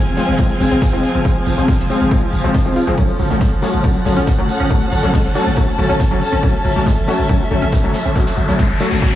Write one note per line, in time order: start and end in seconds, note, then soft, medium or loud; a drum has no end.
0.00 9.15 F3 medium
0.00 2.98 C4 medium
0.00 2.98 G#4 medium
0.00 2.98 F5 medium
0.00 2.98 G#5 medium
0.07 0.17 F1 medium
0.07 closed hi-hat medium
0.17 0.27 F3 medium
0.17 0.32 F3 medium
0.17 0.32 G#3 medium
0.17 0.32 C4 medium
0.17 snare medium
0.17 open hi-hat loud
0.17 tambourine medium
0.28 0.38 F1 medium
0.28 closed hi-hat medium
0.39 0.48 F3 medium
0.39 0.49 F3 medium
0.39 0.48 G#3 medium
0.39 0.48 C4 medium
0.39 kick loud
0.39 closed hi-hat medium
0.39 tambourine medium
0.50 0.54 F3 medium
0.50 closed hi-hat medium
0.60 0.71 F1 medium
0.60 0.76 F3 medium
0.60 0.75 G#3 medium
0.60 0.75 C4 medium
0.60 snare soft
0.60 open hi-hat loud
0.60 tambourine medium
0.71 0.82 F1 medium
0.71 0.78 C4 loud
0.71 snare soft
0.71 closed hi-hat medium
0.82 kick loud
0.82 snare loud
0.82 closed hi-hat medium
0.82 tambourine medium
0.93 1.03 F1 medium
0.93 0.97 F3 loud
0.93 1.02 F3 medium
0.93 1.02 G#3 medium
0.93 1.02 C4 loud
0.93 closed hi-hat medium
1.03 open hi-hat loud
1.03 tambourine medium
1.15 1.25 F1 medium
1.15 1.21 C4 medium
1.15 closed hi-hat medium
1.25 1.35 F3 medium
1.25 1.35 G#3 medium
1.25 1.35 C4 loud
1.25 kick loud
1.25 closed hi-hat medium
1.25 tambourine medium
1.36 closed hi-hat medium
1.46 1.57 F1 loud
1.46 1.53 F3 medium
1.46 open hi-hat loud
1.46 tambourine medium
1.58 1.68 F1 medium
1.58 1.67 F3 medium
1.58 1.67 G#3 medium
1.58 1.67 C4 medium
1.58 snare soft
1.58 closed hi-hat soft
1.68 1.75 G3 medium
1.68 kick loud
1.68 snare loud
1.68 closed hi-hat medium
1.68 tambourine medium
1.79 1.90 F1 medium
1.79 snare medium
1.79 closed hi-hat medium
1.90 2.00 F3 medium
1.90 2.05 F3 medium
1.90 2.05 G#3 medium
1.90 2.05 C4 loud
1.90 open hi-hat loud
1.90 tambourine medium
2.01 2.11 F1 medium
2.01 closed hi-hat medium
2.11 2.21 F3 medium
2.11 2.21 G#3 medium
2.11 2.21 C4 medium
2.11 kick loud
2.11 closed hi-hat medium
2.11 tambourine medium
2.23 2.26 F3 medium
2.23 closed hi-hat medium
2.33 2.44 F1 medium
2.33 open hi-hat loud
2.33 tambourine medium
2.44 2.54 F1 medium
2.44 2.59 F3 medium
2.44 2.53 F3 loud
2.44 2.59 G#3 medium
2.44 2.59 C4 loud
2.44 closed hi-hat medium
2.54 kick loud
2.54 snare loud
2.54 closed hi-hat medium
2.54 tambourine medium
2.66 2.76 F1 medium
2.66 2.80 F3 medium
2.66 2.69 F3 medium
2.66 2.80 G#3 medium
2.66 2.80 C4 loud
2.66 closed hi-hat medium
2.76 2.83 F4 loud
2.76 open hi-hat loud
2.76 tambourine medium
2.87 2.98 F1 medium
2.87 2.93 F3 loud
2.87 2.96 F3 medium
2.87 2.96 G#3 medium
2.87 2.96 C4 loud
2.87 closed hi-hat medium
2.98 3.07 F#3 medium
2.98 3.07 A3 medium
2.98 3.07 C#4 loud
2.98 9.15 C#4 medium
2.98 kick loud
2.98 closed hi-hat medium
2.98 tambourine medium
3.05 9.15 A4 medium
3.09 closed hi-hat medium
3.09 tambourine soft
3.19 3.30 F#1 loud
3.19 3.26 F#3 medium
3.19 open hi-hat loud
3.19 tambourine medium
3.30 3.41 F#1 medium
3.30 3.39 F#3 medium
3.30 3.39 A3 medium
3.30 3.39 C#4 medium
3.30 6.56 F#5 medium
3.30 snare soft
3.30 closed hi-hat soft
3.30 tambourine medium
3.41 3.47 G#3 medium
3.41 kick loud
3.41 snare loud
3.41 closed hi-hat medium
3.41 tambourine medium
3.52 3.62 F#1 medium
3.52 closed hi-hat medium
3.52 tambourine soft
3.62 3.72 F#3 medium
3.62 3.78 F#3 medium
3.62 3.78 A3 medium
3.62 3.78 C#4 loud
3.62 snare medium
3.62 open hi-hat loud
3.62 tambourine medium
3.74 3.84 F#1 medium
3.74 9.15 A5 medium
3.74 closed hi-hat soft
3.74 tambourine medium
3.84 3.94 F#3 medium
3.84 3.94 A3 medium
3.84 3.94 C#4 medium
3.84 kick loud
3.84 closed hi-hat medium
3.84 tambourine medium
3.95 3.99 F#3 medium
3.95 closed hi-hat soft
3.95 tambourine soft
4.05 4.16 F#1 medium
4.05 4.21 F#3 medium
4.05 4.21 A3 medium
4.05 4.21 C#4 medium
4.05 snare soft
4.05 open hi-hat loud
4.05 tambourine medium
4.17 4.27 F#1 medium
4.17 4.23 C#4 loud
4.17 snare soft
4.17 closed hi-hat medium
4.17 tambourine medium
4.27 kick loud
4.27 snare loud
4.27 closed hi-hat medium
4.27 tambourine medium
4.38 4.49 F#1 medium
4.38 4.42 F#3 loud
4.38 4.47 F#3 medium
4.38 4.47 A3 medium
4.38 4.47 C#4 loud
4.38 closed hi-hat medium
4.38 tambourine soft
4.49 open hi-hat loud
4.49 tambourine medium
4.60 4.70 F#1 medium
4.60 4.66 C#4 loud
4.60 closed hi-hat soft
4.60 tambourine medium
4.70 4.80 F#3 medium
4.70 4.80 A3 medium
4.70 4.80 C#4 medium
4.70 kick loud
4.70 closed hi-hat medium
4.70 tambourine medium
4.82 closed hi-hat soft
4.82 tambourine soft
4.92 5.03 F#1 loud
4.92 4.98 F#3 medium
4.92 open hi-hat loud
4.92 tambourine medium
5.03 5.13 F#1 medium
5.03 5.12 F#3 medium
5.03 5.12 A3 medium
5.03 5.12 C#4 medium
5.03 snare soft
5.03 closed hi-hat soft
5.03 tambourine medium
5.14 5.20 G#3 medium
5.14 kick loud
5.14 snare loud
5.14 closed hi-hat medium
5.14 tambourine medium
5.24 5.35 F#1 medium
5.24 snare medium
5.24 closed hi-hat soft
5.24 tambourine soft
5.34 5.45 F#3 medium
5.34 5.50 F#3 medium
5.34 5.50 A3 medium
5.34 5.50 C#4 loud
5.34 open hi-hat loud
5.34 tambourine medium
5.46 5.56 F#1 medium
5.46 closed hi-hat medium
5.46 tambourine medium
5.57 5.66 F#3 medium
5.57 5.66 A3 medium
5.57 5.66 C#4 loud
5.57 kick loud
5.57 closed hi-hat medium
5.57 tambourine medium
5.68 5.72 F#3 medium
5.68 closed hi-hat soft
5.68 tambourine soft
5.78 5.89 F#1 medium
5.78 5.94 F#3 medium
5.78 5.94 A3 medium
5.78 5.94 C#4 medium
5.78 open hi-hat loud
5.78 tambourine medium
5.89 6.00 F#1 medium
5.89 5.96 C#4 loud
5.89 closed hi-hat medium
5.89 tambourine medium
5.99 kick loud
5.99 snare loud
5.99 closed hi-hat medium
5.99 tambourine medium
6.11 6.21 F#1 medium
6.11 6.15 F#3 loud
6.11 6.20 F#3 medium
6.11 6.20 A3 medium
6.11 6.20 C#4 loud
6.11 closed hi-hat medium
6.11 tambourine soft
6.22 open hi-hat loud
6.22 tambourine medium
6.32 6.43 F#1 medium
6.32 6.39 C#4 loud
6.32 closed hi-hat soft
6.32 tambourine medium
6.42 6.53 F#3 medium
6.42 6.53 A3 medium
6.42 6.53 C#4 medium
6.42 9.15 E5 medium
6.42 kick loud
6.42 closed hi-hat medium
6.42 tambourine medium
6.42 riser medium
6.54 closed hi-hat medium
6.54 tambourine soft
6.65 6.75 F#1 loud
6.65 6.71 F#3 medium
6.65 open hi-hat loud
6.65 tambourine medium
6.76 6.86 F#1 medium
6.76 6.85 F#3 medium
6.76 6.85 A3 medium
6.76 6.85 C#4 medium
6.76 snare medium
6.76 closed hi-hat soft
6.76 tambourine medium
6.86 6.93 G#3 medium
6.86 kick loud
6.86 snare loud
6.86 closed hi-hat medium
6.86 tambourine medium
6.97 7.08 F#1 medium
6.97 closed hi-hat medium
6.97 tambourine soft
7.07 7.23 F#3 medium
7.07 7.18 F#3 medium
7.07 7.23 A3 medium
7.07 7.23 C#4 loud
7.07 snare medium
7.07 open hi-hat loud
7.07 tambourine medium
7.19 7.29 F#1 medium
7.19 closed hi-hat soft
7.19 tambourine medium
7.29 7.39 F#3 medium
7.29 7.39 A3 medium
7.29 7.39 C#4 loud
7.29 kick loud
7.29 closed hi-hat medium
7.29 tambourine medium
7.41 7.44 F#3 medium
7.41 closed hi-hat soft
7.41 tambourine soft
7.51 7.62 F#1 medium
7.51 7.66 F#3 medium
7.51 7.66 A3 medium
7.51 7.66 C#4 medium
7.51 open hi-hat loud
7.62 7.72 F#1 medium
7.62 7.68 C#4 loud
7.62 closed hi-hat medium
7.62 tambourine medium
7.72 kick loud
7.72 snare loud
7.72 closed hi-hat medium
7.72 tambourine medium
7.84 7.94 F#1 medium
7.84 7.87 F#3 loud
7.84 7.93 F#3 medium
7.84 7.93 A3 medium
7.84 7.93 C#4 loud
7.84 closed hi-hat medium
7.84 tambourine soft
7.94 snare loud
7.94 open hi-hat loud
7.94 tambourine medium
8.05 8.15 F#1 medium
8.05 8.11 C#4 loud
8.05 closed hi-hat medium
8.05 tambourine medium
8.16 8.25 F#3 medium
8.16 8.26 F#3 medium
8.16 8.25 A3 medium
8.16 8.25 C#4 loud
8.16 kick loud
8.16 snare soft
8.16 closed hi-hat medium
8.16 tambourine soft
8.16 tambourine medium
8.27 snare loud
8.27 closed hi-hat medium
8.27 tambourine medium
8.27 tambourine soft
8.37 8.48 F#1 loud
8.37 8.44 F#3 medium
8.37 open hi-hat loud
8.48 8.59 F#1 medium
8.48 8.57 F#3 medium
8.48 8.57 A3 medium
8.48 8.57 C#4 medium
8.48 snare soft
8.48 closed hi-hat medium
8.48 tambourine medium
8.59 8.65 G#3 medium
8.59 kick loud
8.59 snare loud
8.59 closed hi-hat loud
8.59 tambourine soft
8.59 tambourine medium
8.70 8.80 F#1 medium
8.70 snare medium
8.70 closed hi-hat medium
8.70 tambourine soft
8.80 8.96 F#3 medium
8.80 8.90 F#3 medium
8.80 8.96 A3 medium
8.80 8.96 C#4 medium
8.80 snare loud
8.80 open hi-hat loud
8.80 tambourine medium
8.92 9.02 F#1 medium
8.92 snare loud
8.92 closed hi-hat medium
8.92 tambourine medium
9.02 9.12 F#3 medium
9.02 9.12 A3 medium
9.02 9.12 C#4 loud
9.02 kick loud
9.02 snare loud
9.02 closed hi-hat medium
9.02 tambourine medium